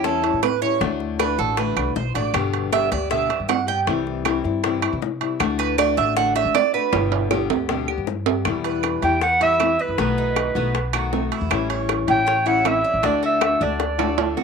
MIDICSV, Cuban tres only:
0, 0, Header, 1, 2, 480
1, 0, Start_track
1, 0, Key_signature, 1, "major"
1, 0, Tempo, 381922
1, 1021, Time_signature, 4, 2, 24, 8
1, 18142, End_track
2, 0, Start_track
2, 0, Title_t, "Cuban tres"
2, 0, Program_c, 0, 25
2, 55, Note_on_c, 0, 69, 81
2, 504, Note_off_c, 0, 69, 0
2, 539, Note_on_c, 0, 71, 79
2, 772, Note_off_c, 0, 71, 0
2, 777, Note_on_c, 0, 73, 94
2, 1012, Note_off_c, 0, 73, 0
2, 1503, Note_on_c, 0, 71, 82
2, 1736, Note_off_c, 0, 71, 0
2, 1742, Note_on_c, 0, 69, 78
2, 1976, Note_off_c, 0, 69, 0
2, 1982, Note_on_c, 0, 71, 70
2, 2430, Note_off_c, 0, 71, 0
2, 2464, Note_on_c, 0, 72, 66
2, 2697, Note_off_c, 0, 72, 0
2, 2706, Note_on_c, 0, 74, 80
2, 2939, Note_off_c, 0, 74, 0
2, 3426, Note_on_c, 0, 76, 95
2, 3659, Note_off_c, 0, 76, 0
2, 3666, Note_on_c, 0, 74, 90
2, 3899, Note_off_c, 0, 74, 0
2, 3905, Note_on_c, 0, 76, 78
2, 4353, Note_off_c, 0, 76, 0
2, 4381, Note_on_c, 0, 78, 80
2, 4617, Note_off_c, 0, 78, 0
2, 4626, Note_on_c, 0, 79, 90
2, 4770, Note_off_c, 0, 79, 0
2, 7023, Note_on_c, 0, 71, 90
2, 7258, Note_off_c, 0, 71, 0
2, 7266, Note_on_c, 0, 74, 95
2, 7500, Note_off_c, 0, 74, 0
2, 7508, Note_on_c, 0, 76, 97
2, 7741, Note_off_c, 0, 76, 0
2, 7749, Note_on_c, 0, 78, 103
2, 7981, Note_off_c, 0, 78, 0
2, 7989, Note_on_c, 0, 76, 92
2, 8221, Note_off_c, 0, 76, 0
2, 8230, Note_on_c, 0, 74, 88
2, 8462, Note_off_c, 0, 74, 0
2, 8469, Note_on_c, 0, 71, 82
2, 9138, Note_off_c, 0, 71, 0
2, 10870, Note_on_c, 0, 71, 74
2, 11334, Note_off_c, 0, 71, 0
2, 11347, Note_on_c, 0, 67, 69
2, 11579, Note_off_c, 0, 67, 0
2, 11588, Note_on_c, 0, 59, 76
2, 11820, Note_off_c, 0, 59, 0
2, 11830, Note_on_c, 0, 64, 74
2, 12293, Note_off_c, 0, 64, 0
2, 12308, Note_on_c, 0, 71, 65
2, 12540, Note_off_c, 0, 71, 0
2, 12554, Note_on_c, 0, 59, 82
2, 12783, Note_off_c, 0, 59, 0
2, 12795, Note_on_c, 0, 63, 71
2, 13256, Note_off_c, 0, 63, 0
2, 13274, Note_on_c, 0, 59, 78
2, 13735, Note_off_c, 0, 59, 0
2, 13750, Note_on_c, 0, 66, 64
2, 14213, Note_off_c, 0, 66, 0
2, 14224, Note_on_c, 0, 64, 69
2, 14690, Note_off_c, 0, 64, 0
2, 14704, Note_on_c, 0, 73, 67
2, 15169, Note_off_c, 0, 73, 0
2, 15182, Note_on_c, 0, 67, 69
2, 15415, Note_off_c, 0, 67, 0
2, 15416, Note_on_c, 0, 61, 79
2, 15652, Note_off_c, 0, 61, 0
2, 15656, Note_on_c, 0, 64, 71
2, 16125, Note_off_c, 0, 64, 0
2, 16142, Note_on_c, 0, 74, 66
2, 16375, Note_off_c, 0, 74, 0
2, 16380, Note_on_c, 0, 62, 86
2, 16614, Note_off_c, 0, 62, 0
2, 16624, Note_on_c, 0, 66, 74
2, 17088, Note_off_c, 0, 66, 0
2, 17105, Note_on_c, 0, 62, 77
2, 17569, Note_off_c, 0, 62, 0
2, 17583, Note_on_c, 0, 69, 69
2, 18047, Note_off_c, 0, 69, 0
2, 18063, Note_on_c, 0, 66, 72
2, 18142, Note_off_c, 0, 66, 0
2, 18142, End_track
0, 0, End_of_file